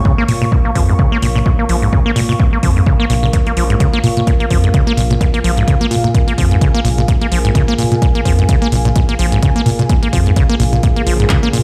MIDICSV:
0, 0, Header, 1, 6, 480
1, 0, Start_track
1, 0, Tempo, 468750
1, 1493, Time_signature, 4, 2, 24, 8
1, 11910, End_track
2, 0, Start_track
2, 0, Title_t, "Ambient pad"
2, 0, Program_c, 0, 92
2, 0, Note_on_c, 0, 70, 81
2, 0, Note_on_c, 0, 77, 92
2, 0, Note_on_c, 0, 85, 80
2, 3935, Note_on_c, 0, 80, 80
2, 3963, Note_off_c, 0, 85, 0
2, 11614, Note_on_c, 0, 85, 82
2, 11642, Note_off_c, 0, 80, 0
2, 11910, Note_off_c, 0, 70, 0
2, 11910, Note_off_c, 0, 77, 0
2, 11910, Note_off_c, 0, 85, 0
2, 11910, End_track
3, 0, Start_track
3, 0, Title_t, "Analog synth pad"
3, 0, Program_c, 1, 89
3, 11092, Note_on_c, 1, 49, 80
3, 11092, Note_on_c, 1, 65, 77
3, 11093, Note_on_c, 1, 58, 76
3, 11093, Note_on_c, 1, 68, 89
3, 11910, Note_off_c, 1, 49, 0
3, 11910, Note_off_c, 1, 58, 0
3, 11910, Note_off_c, 1, 65, 0
3, 11910, Note_off_c, 1, 68, 0
3, 11910, End_track
4, 0, Start_track
4, 0, Title_t, "Acid bass"
4, 0, Program_c, 2, 38
4, 53, Note_on_c, 2, 49, 78
4, 127, Note_off_c, 2, 49, 0
4, 188, Note_on_c, 2, 58, 98
4, 246, Note_off_c, 2, 58, 0
4, 292, Note_on_c, 2, 46, 98
4, 337, Note_off_c, 2, 46, 0
4, 427, Note_on_c, 2, 46, 98
4, 462, Note_off_c, 2, 46, 0
4, 533, Note_on_c, 2, 46, 81
4, 578, Note_off_c, 2, 46, 0
4, 667, Note_on_c, 2, 58, 73
4, 726, Note_off_c, 2, 58, 0
4, 773, Note_on_c, 2, 53, 73
4, 847, Note_off_c, 2, 53, 0
4, 907, Note_on_c, 2, 44, 73
4, 966, Note_off_c, 2, 44, 0
4, 1014, Note_on_c, 2, 49, 83
4, 1088, Note_off_c, 2, 49, 0
4, 1149, Note_on_c, 2, 58, 98
4, 1206, Note_off_c, 2, 58, 0
4, 1254, Note_on_c, 2, 46, 98
4, 1298, Note_off_c, 2, 46, 0
4, 1388, Note_on_c, 2, 46, 100
4, 1423, Note_off_c, 2, 46, 0
4, 1494, Note_on_c, 2, 46, 83
4, 1538, Note_off_c, 2, 46, 0
4, 1629, Note_on_c, 2, 58, 73
4, 1687, Note_off_c, 2, 58, 0
4, 1733, Note_on_c, 2, 53, 75
4, 1808, Note_off_c, 2, 53, 0
4, 1868, Note_on_c, 2, 44, 74
4, 1926, Note_off_c, 2, 44, 0
4, 1972, Note_on_c, 2, 49, 77
4, 2047, Note_off_c, 2, 49, 0
4, 2107, Note_on_c, 2, 58, 102
4, 2165, Note_off_c, 2, 58, 0
4, 2211, Note_on_c, 2, 46, 95
4, 2257, Note_off_c, 2, 46, 0
4, 2346, Note_on_c, 2, 46, 97
4, 2382, Note_off_c, 2, 46, 0
4, 2452, Note_on_c, 2, 46, 80
4, 2497, Note_off_c, 2, 46, 0
4, 2588, Note_on_c, 2, 58, 75
4, 2646, Note_off_c, 2, 58, 0
4, 2693, Note_on_c, 2, 53, 75
4, 2767, Note_off_c, 2, 53, 0
4, 2829, Note_on_c, 2, 44, 73
4, 2886, Note_off_c, 2, 44, 0
4, 2934, Note_on_c, 2, 49, 83
4, 3008, Note_off_c, 2, 49, 0
4, 3068, Note_on_c, 2, 58, 101
4, 3126, Note_off_c, 2, 58, 0
4, 3173, Note_on_c, 2, 46, 101
4, 3218, Note_off_c, 2, 46, 0
4, 3308, Note_on_c, 2, 46, 99
4, 3343, Note_off_c, 2, 46, 0
4, 3414, Note_on_c, 2, 46, 83
4, 3458, Note_off_c, 2, 46, 0
4, 3550, Note_on_c, 2, 58, 74
4, 3607, Note_off_c, 2, 58, 0
4, 3653, Note_on_c, 2, 53, 76
4, 3728, Note_off_c, 2, 53, 0
4, 3788, Note_on_c, 2, 44, 73
4, 3846, Note_off_c, 2, 44, 0
4, 3894, Note_on_c, 2, 49, 78
4, 3968, Note_off_c, 2, 49, 0
4, 4029, Note_on_c, 2, 58, 97
4, 4086, Note_off_c, 2, 58, 0
4, 4134, Note_on_c, 2, 46, 100
4, 4178, Note_off_c, 2, 46, 0
4, 4269, Note_on_c, 2, 46, 97
4, 4303, Note_off_c, 2, 46, 0
4, 4373, Note_on_c, 2, 46, 81
4, 4417, Note_off_c, 2, 46, 0
4, 4508, Note_on_c, 2, 58, 75
4, 4566, Note_off_c, 2, 58, 0
4, 4613, Note_on_c, 2, 53, 76
4, 4688, Note_off_c, 2, 53, 0
4, 4749, Note_on_c, 2, 44, 75
4, 4806, Note_off_c, 2, 44, 0
4, 4853, Note_on_c, 2, 49, 82
4, 4928, Note_off_c, 2, 49, 0
4, 4987, Note_on_c, 2, 58, 102
4, 5045, Note_off_c, 2, 58, 0
4, 5092, Note_on_c, 2, 46, 102
4, 5137, Note_off_c, 2, 46, 0
4, 5227, Note_on_c, 2, 46, 97
4, 5262, Note_off_c, 2, 46, 0
4, 5332, Note_on_c, 2, 46, 79
4, 5377, Note_off_c, 2, 46, 0
4, 5467, Note_on_c, 2, 58, 74
4, 5526, Note_off_c, 2, 58, 0
4, 5573, Note_on_c, 2, 53, 73
4, 5647, Note_off_c, 2, 53, 0
4, 5707, Note_on_c, 2, 44, 76
4, 5765, Note_off_c, 2, 44, 0
4, 5812, Note_on_c, 2, 49, 78
4, 5887, Note_off_c, 2, 49, 0
4, 5948, Note_on_c, 2, 58, 98
4, 6006, Note_off_c, 2, 58, 0
4, 6051, Note_on_c, 2, 46, 100
4, 6097, Note_off_c, 2, 46, 0
4, 6188, Note_on_c, 2, 46, 99
4, 6223, Note_off_c, 2, 46, 0
4, 6293, Note_on_c, 2, 46, 80
4, 6338, Note_off_c, 2, 46, 0
4, 6427, Note_on_c, 2, 58, 73
4, 6485, Note_off_c, 2, 58, 0
4, 6533, Note_on_c, 2, 53, 78
4, 6607, Note_off_c, 2, 53, 0
4, 6668, Note_on_c, 2, 44, 75
4, 6726, Note_off_c, 2, 44, 0
4, 6772, Note_on_c, 2, 49, 82
4, 6847, Note_off_c, 2, 49, 0
4, 6907, Note_on_c, 2, 58, 98
4, 6965, Note_off_c, 2, 58, 0
4, 7011, Note_on_c, 2, 46, 103
4, 7057, Note_off_c, 2, 46, 0
4, 7147, Note_on_c, 2, 46, 100
4, 7182, Note_off_c, 2, 46, 0
4, 7252, Note_on_c, 2, 46, 82
4, 7297, Note_off_c, 2, 46, 0
4, 7387, Note_on_c, 2, 58, 76
4, 7445, Note_off_c, 2, 58, 0
4, 7492, Note_on_c, 2, 53, 75
4, 7567, Note_off_c, 2, 53, 0
4, 7627, Note_on_c, 2, 44, 75
4, 7685, Note_off_c, 2, 44, 0
4, 7730, Note_on_c, 2, 49, 77
4, 7806, Note_off_c, 2, 49, 0
4, 7866, Note_on_c, 2, 58, 101
4, 7925, Note_off_c, 2, 58, 0
4, 7972, Note_on_c, 2, 46, 99
4, 8017, Note_off_c, 2, 46, 0
4, 8107, Note_on_c, 2, 46, 103
4, 8142, Note_off_c, 2, 46, 0
4, 8212, Note_on_c, 2, 46, 82
4, 8257, Note_off_c, 2, 46, 0
4, 8347, Note_on_c, 2, 58, 75
4, 8406, Note_off_c, 2, 58, 0
4, 8452, Note_on_c, 2, 53, 78
4, 8527, Note_off_c, 2, 53, 0
4, 8588, Note_on_c, 2, 44, 75
4, 8646, Note_off_c, 2, 44, 0
4, 8691, Note_on_c, 2, 49, 81
4, 8766, Note_off_c, 2, 49, 0
4, 8825, Note_on_c, 2, 58, 102
4, 8884, Note_off_c, 2, 58, 0
4, 8931, Note_on_c, 2, 46, 102
4, 8977, Note_off_c, 2, 46, 0
4, 9065, Note_on_c, 2, 46, 100
4, 9101, Note_off_c, 2, 46, 0
4, 9171, Note_on_c, 2, 46, 82
4, 9217, Note_off_c, 2, 46, 0
4, 9306, Note_on_c, 2, 58, 74
4, 9365, Note_off_c, 2, 58, 0
4, 9411, Note_on_c, 2, 53, 75
4, 9486, Note_off_c, 2, 53, 0
4, 9547, Note_on_c, 2, 44, 76
4, 9605, Note_off_c, 2, 44, 0
4, 9651, Note_on_c, 2, 49, 77
4, 9727, Note_off_c, 2, 49, 0
4, 9787, Note_on_c, 2, 58, 102
4, 9845, Note_off_c, 2, 58, 0
4, 9891, Note_on_c, 2, 46, 99
4, 9936, Note_off_c, 2, 46, 0
4, 10026, Note_on_c, 2, 46, 99
4, 10062, Note_off_c, 2, 46, 0
4, 10131, Note_on_c, 2, 46, 81
4, 10177, Note_off_c, 2, 46, 0
4, 10266, Note_on_c, 2, 58, 72
4, 10325, Note_off_c, 2, 58, 0
4, 10372, Note_on_c, 2, 53, 78
4, 10447, Note_off_c, 2, 53, 0
4, 10506, Note_on_c, 2, 44, 73
4, 10565, Note_off_c, 2, 44, 0
4, 10612, Note_on_c, 2, 49, 81
4, 10687, Note_off_c, 2, 49, 0
4, 10747, Note_on_c, 2, 58, 99
4, 10805, Note_off_c, 2, 58, 0
4, 10852, Note_on_c, 2, 46, 104
4, 10897, Note_off_c, 2, 46, 0
4, 10986, Note_on_c, 2, 46, 98
4, 11022, Note_off_c, 2, 46, 0
4, 11092, Note_on_c, 2, 46, 83
4, 11137, Note_off_c, 2, 46, 0
4, 11227, Note_on_c, 2, 58, 75
4, 11285, Note_off_c, 2, 58, 0
4, 11330, Note_on_c, 2, 53, 74
4, 11406, Note_off_c, 2, 53, 0
4, 11466, Note_on_c, 2, 44, 76
4, 11525, Note_off_c, 2, 44, 0
4, 11570, Note_on_c, 2, 49, 79
4, 11646, Note_off_c, 2, 49, 0
4, 11705, Note_on_c, 2, 58, 97
4, 11764, Note_off_c, 2, 58, 0
4, 11811, Note_on_c, 2, 46, 100
4, 11856, Note_off_c, 2, 46, 0
4, 11910, End_track
5, 0, Start_track
5, 0, Title_t, "Sub bass"
5, 0, Program_c, 3, 38
5, 291, Note_on_c, 3, 46, 80
5, 485, Note_off_c, 3, 46, 0
5, 773, Note_on_c, 3, 41, 103
5, 966, Note_off_c, 3, 41, 0
5, 1252, Note_on_c, 3, 34, 90
5, 1446, Note_off_c, 3, 34, 0
5, 1733, Note_on_c, 3, 34, 99
5, 1926, Note_off_c, 3, 34, 0
5, 2212, Note_on_c, 3, 46, 81
5, 2406, Note_off_c, 3, 46, 0
5, 2693, Note_on_c, 3, 41, 105
5, 2886, Note_off_c, 3, 41, 0
5, 3173, Note_on_c, 3, 34, 89
5, 3366, Note_off_c, 3, 34, 0
5, 3652, Note_on_c, 3, 34, 97
5, 3846, Note_off_c, 3, 34, 0
5, 4132, Note_on_c, 3, 46, 82
5, 4326, Note_off_c, 3, 46, 0
5, 4613, Note_on_c, 3, 41, 102
5, 4806, Note_off_c, 3, 41, 0
5, 5091, Note_on_c, 3, 34, 91
5, 5285, Note_off_c, 3, 34, 0
5, 5570, Note_on_c, 3, 34, 98
5, 5765, Note_off_c, 3, 34, 0
5, 6051, Note_on_c, 3, 46, 81
5, 6245, Note_off_c, 3, 46, 0
5, 6533, Note_on_c, 3, 41, 103
5, 6726, Note_off_c, 3, 41, 0
5, 7011, Note_on_c, 3, 34, 93
5, 7205, Note_off_c, 3, 34, 0
5, 7492, Note_on_c, 3, 34, 97
5, 7686, Note_off_c, 3, 34, 0
5, 7972, Note_on_c, 3, 46, 82
5, 8165, Note_off_c, 3, 46, 0
5, 8451, Note_on_c, 3, 41, 104
5, 8645, Note_off_c, 3, 41, 0
5, 8931, Note_on_c, 3, 34, 92
5, 9125, Note_off_c, 3, 34, 0
5, 9412, Note_on_c, 3, 34, 98
5, 9606, Note_off_c, 3, 34, 0
5, 9892, Note_on_c, 3, 46, 82
5, 10086, Note_off_c, 3, 46, 0
5, 10372, Note_on_c, 3, 41, 102
5, 10566, Note_off_c, 3, 41, 0
5, 10852, Note_on_c, 3, 34, 94
5, 11046, Note_off_c, 3, 34, 0
5, 11332, Note_on_c, 3, 34, 95
5, 11526, Note_off_c, 3, 34, 0
5, 11811, Note_on_c, 3, 46, 82
5, 11910, Note_off_c, 3, 46, 0
5, 11910, End_track
6, 0, Start_track
6, 0, Title_t, "Drums"
6, 52, Note_on_c, 9, 36, 119
6, 155, Note_off_c, 9, 36, 0
6, 292, Note_on_c, 9, 46, 103
6, 394, Note_off_c, 9, 46, 0
6, 532, Note_on_c, 9, 36, 118
6, 635, Note_off_c, 9, 36, 0
6, 773, Note_on_c, 9, 36, 62
6, 773, Note_on_c, 9, 46, 108
6, 875, Note_off_c, 9, 36, 0
6, 875, Note_off_c, 9, 46, 0
6, 1013, Note_on_c, 9, 36, 120
6, 1115, Note_off_c, 9, 36, 0
6, 1253, Note_on_c, 9, 46, 105
6, 1356, Note_off_c, 9, 46, 0
6, 1493, Note_on_c, 9, 36, 116
6, 1596, Note_off_c, 9, 36, 0
6, 1732, Note_on_c, 9, 46, 103
6, 1835, Note_off_c, 9, 46, 0
6, 1973, Note_on_c, 9, 36, 117
6, 2076, Note_off_c, 9, 36, 0
6, 2213, Note_on_c, 9, 46, 103
6, 2315, Note_off_c, 9, 46, 0
6, 2454, Note_on_c, 9, 36, 117
6, 2556, Note_off_c, 9, 36, 0
6, 2693, Note_on_c, 9, 46, 103
6, 2694, Note_on_c, 9, 36, 58
6, 2795, Note_off_c, 9, 46, 0
6, 2796, Note_off_c, 9, 36, 0
6, 2934, Note_on_c, 9, 36, 120
6, 3036, Note_off_c, 9, 36, 0
6, 3173, Note_on_c, 9, 46, 104
6, 3275, Note_off_c, 9, 46, 0
6, 3413, Note_on_c, 9, 42, 84
6, 3414, Note_on_c, 9, 36, 113
6, 3516, Note_off_c, 9, 36, 0
6, 3516, Note_off_c, 9, 42, 0
6, 3549, Note_on_c, 9, 42, 36
6, 3652, Note_off_c, 9, 42, 0
6, 3654, Note_on_c, 9, 46, 100
6, 3756, Note_off_c, 9, 46, 0
6, 3790, Note_on_c, 9, 42, 36
6, 3892, Note_off_c, 9, 42, 0
6, 3893, Note_on_c, 9, 36, 115
6, 3894, Note_on_c, 9, 42, 85
6, 3996, Note_off_c, 9, 36, 0
6, 3996, Note_off_c, 9, 42, 0
6, 4029, Note_on_c, 9, 42, 35
6, 4131, Note_off_c, 9, 42, 0
6, 4133, Note_on_c, 9, 46, 95
6, 4236, Note_off_c, 9, 46, 0
6, 4269, Note_on_c, 9, 42, 37
6, 4371, Note_off_c, 9, 42, 0
6, 4373, Note_on_c, 9, 36, 111
6, 4374, Note_on_c, 9, 42, 84
6, 4476, Note_off_c, 9, 36, 0
6, 4476, Note_off_c, 9, 42, 0
6, 4509, Note_on_c, 9, 42, 36
6, 4611, Note_off_c, 9, 42, 0
6, 4613, Note_on_c, 9, 36, 60
6, 4613, Note_on_c, 9, 46, 101
6, 4715, Note_off_c, 9, 46, 0
6, 4716, Note_off_c, 9, 36, 0
6, 4749, Note_on_c, 9, 42, 36
6, 4851, Note_off_c, 9, 42, 0
6, 4853, Note_on_c, 9, 36, 113
6, 4853, Note_on_c, 9, 42, 85
6, 4955, Note_off_c, 9, 42, 0
6, 4956, Note_off_c, 9, 36, 0
6, 4989, Note_on_c, 9, 42, 36
6, 5091, Note_off_c, 9, 42, 0
6, 5095, Note_on_c, 9, 46, 98
6, 5197, Note_off_c, 9, 46, 0
6, 5230, Note_on_c, 9, 42, 36
6, 5332, Note_off_c, 9, 42, 0
6, 5333, Note_on_c, 9, 36, 110
6, 5334, Note_on_c, 9, 42, 87
6, 5435, Note_off_c, 9, 36, 0
6, 5437, Note_off_c, 9, 42, 0
6, 5470, Note_on_c, 9, 42, 38
6, 5572, Note_off_c, 9, 42, 0
6, 5574, Note_on_c, 9, 46, 96
6, 5677, Note_off_c, 9, 46, 0
6, 5710, Note_on_c, 9, 42, 38
6, 5812, Note_off_c, 9, 42, 0
6, 5813, Note_on_c, 9, 36, 109
6, 5814, Note_on_c, 9, 42, 88
6, 5915, Note_off_c, 9, 36, 0
6, 5916, Note_off_c, 9, 42, 0
6, 5948, Note_on_c, 9, 42, 37
6, 6051, Note_off_c, 9, 42, 0
6, 6052, Note_on_c, 9, 46, 97
6, 6155, Note_off_c, 9, 46, 0
6, 6188, Note_on_c, 9, 42, 38
6, 6291, Note_off_c, 9, 42, 0
6, 6292, Note_on_c, 9, 36, 108
6, 6293, Note_on_c, 9, 42, 89
6, 6395, Note_off_c, 9, 36, 0
6, 6395, Note_off_c, 9, 42, 0
6, 6430, Note_on_c, 9, 42, 38
6, 6532, Note_off_c, 9, 42, 0
6, 6532, Note_on_c, 9, 36, 57
6, 6534, Note_on_c, 9, 46, 99
6, 6635, Note_off_c, 9, 36, 0
6, 6636, Note_off_c, 9, 46, 0
6, 6668, Note_on_c, 9, 42, 37
6, 6771, Note_off_c, 9, 42, 0
6, 6772, Note_on_c, 9, 36, 112
6, 6773, Note_on_c, 9, 42, 88
6, 6875, Note_off_c, 9, 36, 0
6, 6875, Note_off_c, 9, 42, 0
6, 6909, Note_on_c, 9, 42, 37
6, 7011, Note_off_c, 9, 42, 0
6, 7014, Note_on_c, 9, 46, 95
6, 7116, Note_off_c, 9, 46, 0
6, 7149, Note_on_c, 9, 42, 36
6, 7251, Note_off_c, 9, 42, 0
6, 7252, Note_on_c, 9, 36, 106
6, 7253, Note_on_c, 9, 42, 93
6, 7355, Note_off_c, 9, 36, 0
6, 7356, Note_off_c, 9, 42, 0
6, 7388, Note_on_c, 9, 42, 39
6, 7490, Note_off_c, 9, 42, 0
6, 7493, Note_on_c, 9, 46, 97
6, 7595, Note_off_c, 9, 46, 0
6, 7628, Note_on_c, 9, 42, 40
6, 7731, Note_off_c, 9, 42, 0
6, 7732, Note_on_c, 9, 36, 110
6, 7733, Note_on_c, 9, 42, 91
6, 7835, Note_off_c, 9, 36, 0
6, 7835, Note_off_c, 9, 42, 0
6, 7868, Note_on_c, 9, 42, 38
6, 7970, Note_off_c, 9, 42, 0
6, 7972, Note_on_c, 9, 46, 94
6, 8074, Note_off_c, 9, 46, 0
6, 8107, Note_on_c, 9, 42, 38
6, 8210, Note_off_c, 9, 42, 0
6, 8212, Note_on_c, 9, 36, 107
6, 8212, Note_on_c, 9, 42, 91
6, 8314, Note_off_c, 9, 36, 0
6, 8314, Note_off_c, 9, 42, 0
6, 8347, Note_on_c, 9, 42, 39
6, 8450, Note_off_c, 9, 42, 0
6, 8452, Note_on_c, 9, 36, 55
6, 8453, Note_on_c, 9, 46, 97
6, 8554, Note_off_c, 9, 36, 0
6, 8555, Note_off_c, 9, 46, 0
6, 8587, Note_on_c, 9, 42, 38
6, 8690, Note_off_c, 9, 42, 0
6, 8691, Note_on_c, 9, 42, 91
6, 8692, Note_on_c, 9, 36, 107
6, 8794, Note_off_c, 9, 42, 0
6, 8795, Note_off_c, 9, 36, 0
6, 8827, Note_on_c, 9, 42, 40
6, 8930, Note_off_c, 9, 42, 0
6, 8931, Note_on_c, 9, 46, 96
6, 9033, Note_off_c, 9, 46, 0
6, 9067, Note_on_c, 9, 42, 38
6, 9169, Note_off_c, 9, 42, 0
6, 9171, Note_on_c, 9, 42, 96
6, 9172, Note_on_c, 9, 36, 110
6, 9274, Note_off_c, 9, 42, 0
6, 9275, Note_off_c, 9, 36, 0
6, 9307, Note_on_c, 9, 42, 41
6, 9409, Note_off_c, 9, 42, 0
6, 9411, Note_on_c, 9, 46, 96
6, 9513, Note_off_c, 9, 46, 0
6, 9547, Note_on_c, 9, 42, 41
6, 9649, Note_off_c, 9, 42, 0
6, 9652, Note_on_c, 9, 36, 111
6, 9652, Note_on_c, 9, 42, 95
6, 9754, Note_off_c, 9, 42, 0
6, 9755, Note_off_c, 9, 36, 0
6, 9787, Note_on_c, 9, 42, 39
6, 9890, Note_off_c, 9, 42, 0
6, 9892, Note_on_c, 9, 46, 96
6, 9994, Note_off_c, 9, 46, 0
6, 10028, Note_on_c, 9, 42, 40
6, 10130, Note_off_c, 9, 42, 0
6, 10132, Note_on_c, 9, 42, 92
6, 10133, Note_on_c, 9, 36, 108
6, 10235, Note_off_c, 9, 36, 0
6, 10235, Note_off_c, 9, 42, 0
6, 10268, Note_on_c, 9, 42, 41
6, 10370, Note_off_c, 9, 42, 0
6, 10373, Note_on_c, 9, 36, 56
6, 10373, Note_on_c, 9, 46, 101
6, 10475, Note_off_c, 9, 36, 0
6, 10475, Note_off_c, 9, 46, 0
6, 10507, Note_on_c, 9, 42, 39
6, 10610, Note_off_c, 9, 42, 0
6, 10612, Note_on_c, 9, 42, 92
6, 10613, Note_on_c, 9, 36, 110
6, 10714, Note_off_c, 9, 42, 0
6, 10715, Note_off_c, 9, 36, 0
6, 10747, Note_on_c, 9, 42, 39
6, 10849, Note_off_c, 9, 42, 0
6, 10852, Note_on_c, 9, 46, 100
6, 10955, Note_off_c, 9, 46, 0
6, 10988, Note_on_c, 9, 42, 39
6, 11090, Note_off_c, 9, 42, 0
6, 11092, Note_on_c, 9, 36, 114
6, 11092, Note_on_c, 9, 42, 93
6, 11194, Note_off_c, 9, 42, 0
6, 11195, Note_off_c, 9, 36, 0
6, 11227, Note_on_c, 9, 42, 40
6, 11330, Note_off_c, 9, 42, 0
6, 11332, Note_on_c, 9, 46, 103
6, 11434, Note_off_c, 9, 46, 0
6, 11467, Note_on_c, 9, 42, 39
6, 11565, Note_on_c, 9, 39, 120
6, 11569, Note_off_c, 9, 42, 0
6, 11571, Note_on_c, 9, 42, 93
6, 11572, Note_on_c, 9, 36, 116
6, 11668, Note_off_c, 9, 39, 0
6, 11674, Note_off_c, 9, 42, 0
6, 11675, Note_off_c, 9, 36, 0
6, 11706, Note_on_c, 9, 42, 39
6, 11809, Note_off_c, 9, 42, 0
6, 11811, Note_on_c, 9, 46, 101
6, 11910, Note_off_c, 9, 46, 0
6, 11910, End_track
0, 0, End_of_file